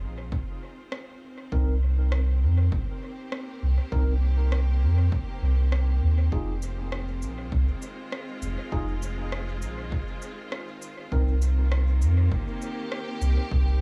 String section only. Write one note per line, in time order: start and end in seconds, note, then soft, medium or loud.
0.00 11.11 D#3 medium
0.00 1.52 G#3 medium
0.00 13.81 C4 medium
0.00 2.99 F4 medium
0.00 13.81 C5 medium
1.72 8.20 A#3 medium
2.06 8.26 G4 medium
6.63 13.06 F4 medium
6.81 11.12 G#3 medium
11.12 13.81 D#3 medium
11.54 13.81 A#3 medium
12.25 13.81 G4 medium